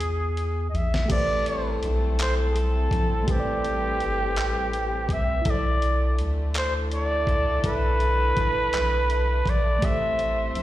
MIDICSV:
0, 0, Header, 1, 7, 480
1, 0, Start_track
1, 0, Key_signature, 0, "minor"
1, 0, Tempo, 727273
1, 723, Time_signature, 6, 3, 24, 8
1, 7013, End_track
2, 0, Start_track
2, 0, Title_t, "Flugelhorn"
2, 0, Program_c, 0, 56
2, 0, Note_on_c, 0, 68, 91
2, 447, Note_off_c, 0, 68, 0
2, 459, Note_on_c, 0, 75, 62
2, 498, Note_on_c, 0, 76, 71
2, 508, Note_off_c, 0, 75, 0
2, 731, Note_off_c, 0, 76, 0
2, 735, Note_on_c, 0, 74, 104
2, 1183, Note_off_c, 0, 74, 0
2, 1466, Note_on_c, 0, 72, 86
2, 1548, Note_off_c, 0, 72, 0
2, 1655, Note_on_c, 0, 68, 60
2, 1700, Note_on_c, 0, 69, 77
2, 1710, Note_off_c, 0, 68, 0
2, 2185, Note_on_c, 0, 67, 110
2, 2195, Note_off_c, 0, 69, 0
2, 3385, Note_on_c, 0, 76, 95
2, 3395, Note_off_c, 0, 67, 0
2, 3629, Note_on_c, 0, 74, 108
2, 3639, Note_off_c, 0, 76, 0
2, 4096, Note_off_c, 0, 74, 0
2, 4345, Note_on_c, 0, 72, 98
2, 4448, Note_off_c, 0, 72, 0
2, 4581, Note_on_c, 0, 74, 106
2, 5026, Note_off_c, 0, 74, 0
2, 5062, Note_on_c, 0, 71, 123
2, 6265, Note_on_c, 0, 74, 95
2, 6275, Note_off_c, 0, 71, 0
2, 6498, Note_on_c, 0, 76, 117
2, 6508, Note_off_c, 0, 74, 0
2, 7013, Note_off_c, 0, 76, 0
2, 7013, End_track
3, 0, Start_track
3, 0, Title_t, "Reed electric piano"
3, 0, Program_c, 1, 4
3, 0, Control_c, 1, 64, 127
3, 0, Note_on_c, 1, 52, 58
3, 0, Note_on_c, 1, 62, 55
3, 0, Note_on_c, 1, 65, 54
3, 0, Note_on_c, 1, 68, 66
3, 682, Note_off_c, 1, 52, 0
3, 695, Note_off_c, 1, 62, 0
3, 695, Note_on_c, 1, 57, 71
3, 705, Note_off_c, 1, 65, 0
3, 715, Note_on_c, 1, 67, 65
3, 717, Note_off_c, 1, 68, 0
3, 732, Control_c, 1, 64, 0
3, 738, Note_on_c, 1, 71, 59
3, 762, Note_on_c, 1, 72, 77
3, 847, Control_c, 1, 64, 127
3, 2123, Note_off_c, 1, 57, 0
3, 2133, Note_off_c, 1, 67, 0
3, 2135, Note_on_c, 1, 57, 65
3, 2144, Note_off_c, 1, 71, 0
3, 2155, Note_on_c, 1, 67, 62
3, 2156, Note_off_c, 1, 72, 0
3, 2178, Note_on_c, 1, 71, 61
3, 2201, Note_on_c, 1, 72, 61
3, 2225, Note_off_c, 1, 72, 0
3, 2242, Note_on_c, 1, 74, 83
3, 3563, Note_off_c, 1, 57, 0
3, 3573, Note_off_c, 1, 67, 0
3, 3574, Note_on_c, 1, 64, 74
3, 3584, Note_off_c, 1, 71, 0
3, 3607, Note_on_c, 1, 69, 65
3, 3610, Control_c, 1, 64, 0
3, 3616, Note_off_c, 1, 74, 0
3, 3639, Note_on_c, 1, 72, 63
3, 3664, Note_off_c, 1, 72, 0
3, 3683, Note_on_c, 1, 74, 74
3, 3715, Control_c, 1, 64, 127
3, 5002, Note_off_c, 1, 64, 0
3, 5012, Note_on_c, 1, 64, 73
3, 5019, Note_off_c, 1, 69, 0
3, 5045, Note_on_c, 1, 69, 60
3, 5057, Note_off_c, 1, 74, 0
3, 5080, Note_on_c, 1, 76, 73
3, 6441, Note_off_c, 1, 64, 0
3, 6458, Note_off_c, 1, 69, 0
3, 6458, Note_on_c, 1, 57, 67
3, 6475, Note_off_c, 1, 76, 0
3, 6482, Note_on_c, 1, 67, 56
3, 6491, Control_c, 1, 64, 0
3, 6502, Note_on_c, 1, 69, 62
3, 6524, Note_on_c, 1, 72, 77
3, 6612, Control_c, 1, 64, 127
3, 7013, Note_off_c, 1, 57, 0
3, 7013, Note_off_c, 1, 67, 0
3, 7013, Note_off_c, 1, 69, 0
3, 7013, Note_off_c, 1, 72, 0
3, 7013, End_track
4, 0, Start_track
4, 0, Title_t, "Horn section"
4, 0, Program_c, 2, 61
4, 724, Note_on_c, 2, 60, 70
4, 725, Note_on_c, 2, 64, 68
4, 725, Note_on_c, 2, 69, 82
4, 3337, Note_off_c, 2, 60, 0
4, 3337, Note_off_c, 2, 69, 0
4, 3338, Note_off_c, 2, 64, 0
4, 4323, Note_on_c, 2, 62, 73
4, 4323, Note_on_c, 2, 64, 70
4, 4323, Note_on_c, 2, 69, 82
4, 6217, Note_off_c, 2, 62, 0
4, 6217, Note_off_c, 2, 64, 0
4, 6217, Note_off_c, 2, 69, 0
4, 6484, Note_on_c, 2, 64, 72
4, 6484, Note_on_c, 2, 67, 69
4, 6484, Note_on_c, 2, 72, 83
4, 7013, Note_off_c, 2, 64, 0
4, 7013, Note_off_c, 2, 67, 0
4, 7013, Note_off_c, 2, 72, 0
4, 7013, End_track
5, 0, Start_track
5, 0, Title_t, "String section"
5, 0, Program_c, 3, 48
5, 719, Note_on_c, 3, 60, 78
5, 722, Note_on_c, 3, 55, 71
5, 723, Note_on_c, 3, 57, 84
5, 2149, Note_off_c, 3, 57, 0
5, 2174, Note_on_c, 3, 71, 90
5, 3575, Note_off_c, 3, 60, 0
5, 3576, Note_off_c, 3, 55, 0
5, 3594, Note_off_c, 3, 71, 0
5, 3603, Note_on_c, 3, 50, 85
5, 3604, Note_on_c, 3, 52, 78
5, 3604, Note_on_c, 3, 57, 93
5, 6457, Note_off_c, 3, 50, 0
5, 6457, Note_off_c, 3, 52, 0
5, 6492, Note_on_c, 3, 55, 71
5, 6492, Note_on_c, 3, 60, 78
5, 7013, Note_off_c, 3, 55, 0
5, 7013, Note_off_c, 3, 57, 0
5, 7013, Note_off_c, 3, 60, 0
5, 7013, End_track
6, 0, Start_track
6, 0, Title_t, "Analog synth bass"
6, 0, Program_c, 4, 38
6, 0, Note_on_c, 4, 40, 94
6, 458, Note_off_c, 4, 40, 0
6, 490, Note_on_c, 4, 34, 88
6, 703, Note_off_c, 4, 34, 0
6, 728, Note_on_c, 4, 33, 107
6, 1179, Note_off_c, 4, 33, 0
6, 1213, Note_on_c, 4, 35, 89
6, 1902, Note_off_c, 4, 35, 0
6, 1925, Note_on_c, 4, 34, 102
6, 2140, Note_off_c, 4, 34, 0
6, 2169, Note_on_c, 4, 33, 106
6, 2654, Note_on_c, 4, 31, 84
6, 2664, Note_off_c, 4, 33, 0
6, 2891, Note_on_c, 4, 33, 108
6, 2901, Note_off_c, 4, 31, 0
6, 3361, Note_on_c, 4, 36, 100
6, 3370, Note_off_c, 4, 33, 0
6, 3578, Note_off_c, 4, 36, 0
6, 3605, Note_on_c, 4, 35, 101
6, 4088, Note_on_c, 4, 38, 102
6, 4097, Note_off_c, 4, 35, 0
6, 4802, Note_on_c, 4, 36, 89
6, 4812, Note_off_c, 4, 38, 0
6, 5019, Note_off_c, 4, 36, 0
6, 5044, Note_on_c, 4, 35, 103
6, 5497, Note_off_c, 4, 35, 0
6, 5526, Note_on_c, 4, 33, 88
6, 5741, Note_off_c, 4, 33, 0
6, 5772, Note_on_c, 4, 35, 101
6, 6221, Note_off_c, 4, 35, 0
6, 6244, Note_on_c, 4, 34, 93
6, 6460, Note_off_c, 4, 34, 0
6, 6487, Note_on_c, 4, 33, 116
6, 6939, Note_off_c, 4, 33, 0
6, 6972, Note_on_c, 4, 35, 91
6, 7013, Note_off_c, 4, 35, 0
6, 7013, End_track
7, 0, Start_track
7, 0, Title_t, "Drums"
7, 3, Note_on_c, 9, 42, 68
7, 69, Note_off_c, 9, 42, 0
7, 246, Note_on_c, 9, 42, 46
7, 312, Note_off_c, 9, 42, 0
7, 493, Note_on_c, 9, 42, 38
7, 559, Note_off_c, 9, 42, 0
7, 621, Note_on_c, 9, 38, 75
7, 687, Note_off_c, 9, 38, 0
7, 724, Note_on_c, 9, 36, 102
7, 724, Note_on_c, 9, 42, 75
7, 724, Note_on_c, 9, 49, 87
7, 790, Note_off_c, 9, 36, 0
7, 790, Note_off_c, 9, 42, 0
7, 790, Note_off_c, 9, 49, 0
7, 965, Note_on_c, 9, 42, 49
7, 1031, Note_off_c, 9, 42, 0
7, 1205, Note_on_c, 9, 42, 46
7, 1271, Note_off_c, 9, 42, 0
7, 1444, Note_on_c, 9, 42, 86
7, 1455, Note_on_c, 9, 39, 113
7, 1510, Note_off_c, 9, 42, 0
7, 1521, Note_off_c, 9, 39, 0
7, 1687, Note_on_c, 9, 42, 52
7, 1753, Note_off_c, 9, 42, 0
7, 1921, Note_on_c, 9, 36, 81
7, 1931, Note_on_c, 9, 42, 45
7, 1987, Note_off_c, 9, 36, 0
7, 1997, Note_off_c, 9, 42, 0
7, 2163, Note_on_c, 9, 42, 69
7, 2164, Note_on_c, 9, 36, 110
7, 2229, Note_off_c, 9, 42, 0
7, 2230, Note_off_c, 9, 36, 0
7, 2406, Note_on_c, 9, 42, 47
7, 2472, Note_off_c, 9, 42, 0
7, 2643, Note_on_c, 9, 42, 42
7, 2709, Note_off_c, 9, 42, 0
7, 2880, Note_on_c, 9, 42, 80
7, 2891, Note_on_c, 9, 39, 115
7, 2946, Note_off_c, 9, 42, 0
7, 2957, Note_off_c, 9, 39, 0
7, 3125, Note_on_c, 9, 42, 52
7, 3191, Note_off_c, 9, 42, 0
7, 3358, Note_on_c, 9, 36, 89
7, 3367, Note_on_c, 9, 42, 48
7, 3424, Note_off_c, 9, 36, 0
7, 3433, Note_off_c, 9, 42, 0
7, 3598, Note_on_c, 9, 42, 73
7, 3601, Note_on_c, 9, 36, 116
7, 3664, Note_off_c, 9, 42, 0
7, 3667, Note_off_c, 9, 36, 0
7, 3842, Note_on_c, 9, 42, 47
7, 3908, Note_off_c, 9, 42, 0
7, 4082, Note_on_c, 9, 42, 45
7, 4148, Note_off_c, 9, 42, 0
7, 4319, Note_on_c, 9, 42, 94
7, 4330, Note_on_c, 9, 39, 115
7, 4385, Note_off_c, 9, 42, 0
7, 4396, Note_off_c, 9, 39, 0
7, 4564, Note_on_c, 9, 42, 52
7, 4630, Note_off_c, 9, 42, 0
7, 4798, Note_on_c, 9, 36, 81
7, 4809, Note_on_c, 9, 42, 39
7, 4864, Note_off_c, 9, 36, 0
7, 4875, Note_off_c, 9, 42, 0
7, 5041, Note_on_c, 9, 36, 118
7, 5041, Note_on_c, 9, 42, 78
7, 5107, Note_off_c, 9, 36, 0
7, 5107, Note_off_c, 9, 42, 0
7, 5281, Note_on_c, 9, 42, 46
7, 5347, Note_off_c, 9, 42, 0
7, 5522, Note_on_c, 9, 42, 48
7, 5523, Note_on_c, 9, 36, 99
7, 5588, Note_off_c, 9, 42, 0
7, 5589, Note_off_c, 9, 36, 0
7, 5761, Note_on_c, 9, 42, 85
7, 5772, Note_on_c, 9, 39, 122
7, 5827, Note_off_c, 9, 42, 0
7, 5838, Note_off_c, 9, 39, 0
7, 6005, Note_on_c, 9, 42, 54
7, 6071, Note_off_c, 9, 42, 0
7, 6241, Note_on_c, 9, 36, 86
7, 6252, Note_on_c, 9, 42, 45
7, 6307, Note_off_c, 9, 36, 0
7, 6318, Note_off_c, 9, 42, 0
7, 6484, Note_on_c, 9, 36, 108
7, 6484, Note_on_c, 9, 42, 84
7, 6550, Note_off_c, 9, 36, 0
7, 6550, Note_off_c, 9, 42, 0
7, 6725, Note_on_c, 9, 42, 43
7, 6791, Note_off_c, 9, 42, 0
7, 6966, Note_on_c, 9, 42, 50
7, 7013, Note_off_c, 9, 42, 0
7, 7013, End_track
0, 0, End_of_file